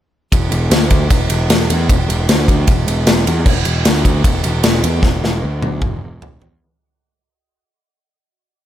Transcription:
0.32 E1, kick, ride
0.52 E1, ride
0.71 D2, snare, ride
0.90 kick, ride
1.10 E1, kick, ride
1.30 E1, ride
1.50 E1, snare, ride
1.70 E2, ride
1.90 E1, kick, ride
2.09 E1, ride
2.29 D2, snare, ride
2.48 kick, ride
2.67 E1, kick, ride
2.88 E1, ride
3.07 E1, snare, ride
3.27 E2, ride
3.46 E1, kick, crash
3.65 E1, ride
3.85 D2, snare, ride
4.05 kick, ride
4.24 E1, kick, ride
4.44 E1, ride
4.64 E1, snare, ride
4.84 E2, ride
5.02 E1, kick, snare
5.24 E1, snare
5.44 D2
5.62 high tom
5.82 E1, kick, mid tom
6.04 E1
6.22 E1, floor tom
6.41 E2, floor tom

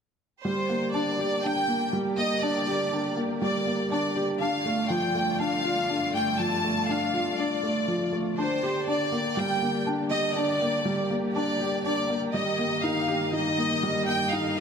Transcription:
0.44 D3 G3 A#3 G4 C5 D5
0.69 A#3
0.94 D4 D5
1.19 G4
1.44 D4 G5
1.68 A#3
1.93 G3
2.18 A#3 D#5
2.42 D4 D5
2.67 G4
2.92 D4
3.17 A#3
3.42 G3 D5
3.67 A#3
3.91 D4 D5
4.16 G4
4.41 G2 A3 D4 F4 F5
4.66 A3
4.90 F3 G5
5.15 A3
5.39 D4 F5
5.65 F4
5.89 D4
6.14 A3 G5
6.39 F3 A5
6.64 A3
6.89 D4 F5
7.14 F4
7.38 D4 D5
7.63 A3
7.88 F3
8.12 A3
8.37 D3 A#3 D4 G4 C5
8.63 G4
8.87 D4 D5
9.12 A#3
9.37 G3 G5
9.62 A#3
9.86 D4
10.11 G4 D#5
10.36 D4 D5
10.61 A#3
10.85 G3
11.10 A#3
11.35 D4 D5
11.60 G4
11.85 D4 D5
12.10 A#3
12.34 G2 D#3 G3 D#5
12.59 A#3
12.84 D#4 F5
13.08 G4
13.33 D#4 D#5
13.58 A#3
13.83 G3
14.08 A#3 G5
14.33 D#4 A4 F5

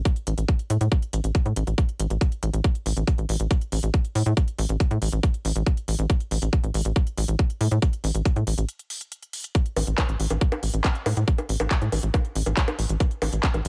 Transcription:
0.05 kick, closed hi-hat
0.16 closed hi-hat
0.27 A1, closed hi-hat
0.38 A1, closed hi-hat
0.48 kick, closed hi-hat
0.59 closed hi-hat
0.70 A2, closed hi-hat
0.81 A2, closed hi-hat
0.92 kick, closed hi-hat
1.02 closed hi-hat
1.13 A1, closed hi-hat
1.24 A1, closed hi-hat
1.35 kick, closed hi-hat
1.46 A2, closed hi-hat
1.56 A1, closed hi-hat
1.67 A1, closed hi-hat
1.78 kick, closed hi-hat
1.89 closed hi-hat
2.00 A1, closed hi-hat
2.10 A1, closed hi-hat
2.21 kick, closed hi-hat
2.32 closed hi-hat
2.43 A1, closed hi-hat
2.53 A1, closed hi-hat
2.64 kick, closed hi-hat
2.75 closed hi-hat
2.86 A1, open hi-hat
2.97 A1, closed hi-hat
3.07 kick, closed hi-hat
3.18 A1, closed hi-hat
3.29 A1, open hi-hat
3.40 A1, closed hi-hat
3.51 kick, closed hi-hat
3.61 closed hi-hat
3.72 A1, open hi-hat
3.83 A1, closed hi-hat
3.94 kick, closed hi-hat
4.05 closed hi-hat
4.15 A2, open hi-hat
4.26 A2, closed hi-hat
4.37 kick, closed hi-hat
4.48 closed hi-hat
4.58 A1, open hi-hat
4.69 A1, closed hi-hat
4.80 kick, closed hi-hat
4.91 A2, closed hi-hat
5.02 A1, open hi-hat
5.12 A1, closed hi-hat
5.23 kick, closed hi-hat
5.34 closed hi-hat
5.45 A1, open hi-hat
5.56 A1, closed hi-hat
5.66 kick, closed hi-hat
5.77 closed hi-hat
5.88 A1, open hi-hat
5.99 A1, closed hi-hat
6.10 kick, closed hi-hat
6.20 closed hi-hat
6.31 A1, open hi-hat
6.42 A1, closed hi-hat
6.53 kick, closed hi-hat
6.64 A1, closed hi-hat
6.74 A1, open hi-hat
6.85 A1, closed hi-hat
6.96 kick, closed hi-hat
7.07 closed hi-hat
7.17 A1, open hi-hat
7.28 A1, closed hi-hat
7.39 kick, closed hi-hat
7.50 closed hi-hat
7.61 A2, open hi-hat
7.71 A2, closed hi-hat
7.82 kick, closed hi-hat
7.93 closed hi-hat
8.04 A1, open hi-hat
8.15 A1, closed hi-hat
8.25 kick, closed hi-hat
8.36 A2, closed hi-hat
8.47 A1, open hi-hat
8.58 A1, closed hi-hat
8.69 closed hi-hat
8.79 closed hi-hat
8.90 open hi-hat
9.01 closed hi-hat
9.12 closed hi-hat
9.23 closed hi-hat
9.33 open hi-hat
9.44 closed hi-hat
9.55 kick, closed hi-hat
9.66 closed hi-hat
9.76 A1, open hi-hat, high bongo
9.87 A1, closed hi-hat
9.98 kick, clap, closed hi-hat, high bongo
10.09 A1, closed hi-hat
10.20 A1, open hi-hat
10.30 A1, closed hi-hat, high bongo
10.41 kick, closed hi-hat
10.52 closed hi-hat, high bongo
10.63 A1, open hi-hat
10.74 A1, closed hi-hat
10.84 kick, clap, closed hi-hat, high bongo
10.95 closed hi-hat
11.06 A2, open hi-hat, high bongo
11.17 A2, closed hi-hat
11.28 kick, closed hi-hat
11.38 closed hi-hat, high bongo
11.49 A1, open hi-hat
11.60 A1, closed hi-hat, high bongo
11.71 kick, clap, closed hi-hat
11.82 A2, closed hi-hat
11.92 A1, open hi-hat, high bongo
12.03 A1, closed hi-hat
12.14 kick, closed hi-hat, high bongo
12.25 closed hi-hat
12.35 A1, open hi-hat
12.46 A1, closed hi-hat, high bongo
12.57 kick, clap, closed hi-hat
12.68 closed hi-hat, high bongo
12.79 A1, open hi-hat
12.89 A1, closed hi-hat
13.00 kick, closed hi-hat, high bongo
13.11 closed hi-hat
13.22 A1, open hi-hat, high bongo
13.33 A1, closed hi-hat
13.43 kick, clap, closed hi-hat
13.54 A1, closed hi-hat, high bongo
13.65 A1, open hi-hat

